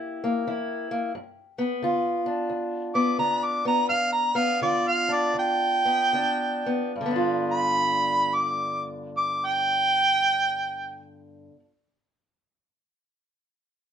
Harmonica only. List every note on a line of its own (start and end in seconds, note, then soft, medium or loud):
2.95 3.17 D6 loud
3.19 3.46 A#5 loud
3.45 3.66 D6 medium
3.68 3.88 A#5 medium
3.89 4.12 F5 loud
4.13 4.39 A#5 medium
4.37 4.60 F5 medium
4.62 4.89 D5 medium
4.88 5.14 F5 loud
5.13 5.36 D5 loud
5.39 6.92 G5 loud
7.52 8.36 B5 loud
8.35 8.87 D6 medium
9.17 9.48 D6 medium
9.46 11.03 G5 loud